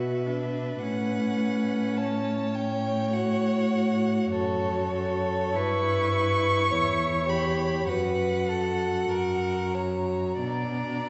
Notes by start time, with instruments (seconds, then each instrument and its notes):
Already playing: cello B2, viola F#4, violin B4 E5
0.26 viola D4
0.81 cello A2, viola C#4, violin F#5
1.97 violin C#5 A5
2.55 violin G5
3.13 viola F#4, violin F#5
4.30 cello F#2, violin A4 C#5
4.92 violin A4
5.55 cello G2, viola E4, violin B4 C#6
6.12 violin B4
6.70 cello E2, viola E4, violin C#5
7.29 viola G4, violin B5
7.88 cello F#2, viola F#4, violin B4 F#5
8.48 violin A4
9.10 cello F#2, violin A#4
9.74 violin C#5 A#5
10.41 cello B2, viola D4, violin D5 A#5